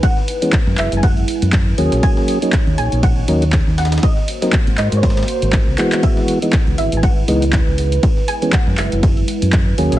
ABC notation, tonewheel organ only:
X:1
M:4/4
L:1/16
Q:"Swing 16ths" 1/4=120
K:F#mix
V:1 name="Tonewheel organ"
z3 [E,G,B,C] z8 z2 [F,A,CG]2- | [F,A,CG]3 [F,A,CD] z6 [F,A,CD] z4 z | z3 [F,A,^B,D] z8 z2 [E,G,=B,F]2- | [E,G,B,F]3 [E,G,B,D] z6 [E,G,B,D] z4 z |
z3 [E,G,B,C] z8 z2 [F,A,CG]2 |]